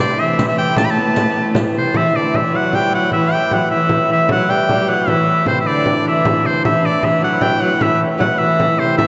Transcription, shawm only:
0.00 D5
0.19 E5
0.48 E5
0.58 G5
0.77 A5
0.85 B5
0.90 A5
1.78 C5
1.96 E5
2.16 D5
2.35 E5
2.56 F#5
2.75 G5
2.94 F#5
3.13 E5
3.33 G5
3.53 F#5
3.71 E5
4.12 E5
4.31 F#5
4.50 G5
4.89 F#5
5.08 E5
5.47 C5
5.61 E5
5.67 D5
6.08 E5
6.46 C5
6.65 E5
6.85 D5
7.04 E5
7.24 F#5
7.42 G5
7.62 F#5
7.82 E5
8.19 F#5
8.38 E5
8.79 C5
8.97 E5

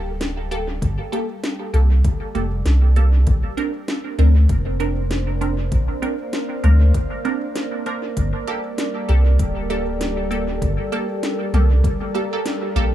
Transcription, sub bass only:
Already playing: D1
0.82 G1
1.74 C2
2.35 F1
2.65 C2
3.27 A#1
4.18 D2
4.49 F1
5.72 A#1
6.64 D2
8.17 G1
9.09 C2
9.39 D1
10.62 G1
11.53 C2
12.76 A#1

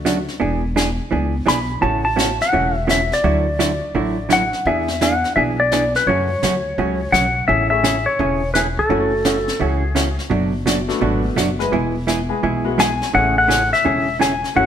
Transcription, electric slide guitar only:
1.48 B5
1.82 A5
2.05 A5
2.42 F#5
2.91 E5
3.14 D5
4.33 F#5
4.67 E5
5.02 F#5
5.36 E5
5.60 D5
5.96 B4
6.07 C#5
7.12 F#5
7.48 E5
7.70 E5
8.06 C#5
8.54 B4
8.79 A4
9.68 G#4
12.80 G#5
13.15 F#5
13.38 F#5
13.73 E5
14.21 G#5
14.56 F#5

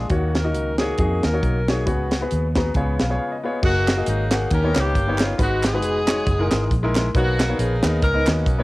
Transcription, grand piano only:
0.10 D#3 A#3 D#4 F#4 C#5
0.43 A#3 D#4 F#4 D#5
0.78 A#3 D#4 F#4 C#5
0.98 A#3 D#4 F#4 G#4
1.32 A#3 D#4 F#4 C#5
1.68 A#3 D#4 F#4 C#5
1.86 C#3 B3 F#4 G#4 C#5
2.21 B3 F#4 G#4 B4
2.56 B3 F#4 G#4 B4 A#5
2.75 C#3 B3 F4 G#4 C#5 G#5
3.01 F5
3.09 B3 F4 G#4 C#5
3.19 F5
3.32 D#5
3.43 B3 F4 G#4 C#5
3.62 A#3 F#4 G#4 D#5
3.97 A#3 F#4 G#4 D#5
4.31 A#3 F#4 G#4 F#5
4.51 D#3
4.63 B3 D#4 G4 C#5
5.07 B3 D#4 G4 C#5
5.37 G#2 G#3 D#4 F#4 B4
5.73 G#3 D#4 F#4 B4
6.07 G#3 D#4 F#4 C#5
6.39 E3 G#3 D#4 A#4
6.83 G#3 D#4 E4 A#4
7.14 B2 B3 D#4 A#4 C#5
7.48 B3 D#4 A#4 C#5
7.82 B3 D#4 A#4 D#5
8.14 B3 D#4 A#4 D#5
8.58 B3 D#4 A#4 C#5

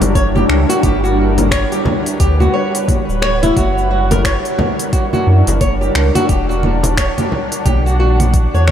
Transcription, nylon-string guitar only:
0.15 C#5
0.35 G4
0.69 F#4
0.83 G4
1.04 F#4
1.51 C#5
1.72 G4
2.20 G4
2.40 F#4
2.53 C#5
3.22 C#5
3.43 E4
3.56 F#4
3.91 F#4
4.11 A#4
4.25 C#5
4.93 F#4
5.13 F#4
5.61 C#5
5.81 G4
6.15 F#4
6.29 G4
6.49 F#4
6.97 C#5
7.18 G4
7.66 G4
7.86 F#4
8.00 F#4
8.54 C#5
8.68 C#5

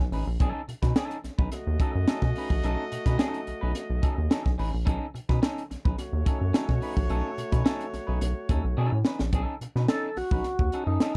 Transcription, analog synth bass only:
0.11 A1
0.27 A#1
0.40 B1
0.68 B2
0.82 B2
1.24 B1
1.39 B1
1.67 D#2
1.95 F#2
2.22 B2
2.50 A#1
2.64 B1
2.92 B2
3.06 B2
3.47 B1
3.63 B1
3.90 B1
4.18 D#2
4.45 B1
4.59 A1
4.74 A#1
4.87 B1
5.14 B2
5.29 B2
5.71 B1
5.85 B1
6.13 D#2
6.41 F#2
6.69 B2
6.97 A#1
7.10 B1
7.38 B2
7.52 B2
7.93 B1
8.08 B1
8.21 B1
8.49 D#2
8.64 B1
8.78 B2
8.92 A2
9.20 A#1
9.33 B1
9.61 B2
9.76 B2
10.17 B1
10.31 B1
10.59 D#2
10.87 F#2

